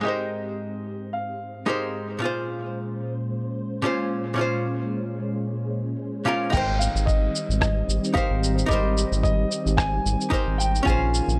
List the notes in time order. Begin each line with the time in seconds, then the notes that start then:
Already playing: G#2 C4 G4
0.01 G#3 D#4 G4 D#5
0.05 A#4 C5
1.13 F5
1.66 G#3 D#4 G4 A#4 C5
2.19 A#2 G#3 C#4 F4
2.24 G#4 C5
3.82 A#2 C#4 F4 C5
4.34 A#2 C#4 F4
4.39 G#4 C5
6.25 A#2 C#4 F4 A#4 F5
6.50 G#1 D#3 G3 C4 D#4 G4 G5, kick, crash
6.54 A#4 C5, cabasa
6.79 F5, cabasa
6.95 G#1, cabasa
7.06 D#5, kick, cabasa
7.36 cabasa
7.49 G#1, cabasa
7.60 D#5, kick, cross-stick, cabasa
7.88 G#1, cabasa
8.04 cabasa
8.14 D#4 G4 A#4 C5 F5, kick, cabasa
8.30 G#1
8.44 cabasa
8.58 cabasa
8.66 G#1 G3 D#4 D#5, kick
8.71 A#4 C5, cabasa
8.98 cabasa
9.12 G#1, cabasa
9.23 D#5, kick, cabasa
9.52 cabasa
9.66 G#1, cabasa
9.77 G#5, kick, cross-stick, cabasa
10.05 G#1, cabasa
10.21 cabasa
10.30 D#4 G4 A#4 C5, kick, cabasa
10.47 G#1
10.58 G5, cabasa
10.75 cabasa
10.83 A#1 A#3 C#4 F4 G#5, kick
10.87 G#4 C5, cabasa
11.14 cabasa
11.28 A#1, cabasa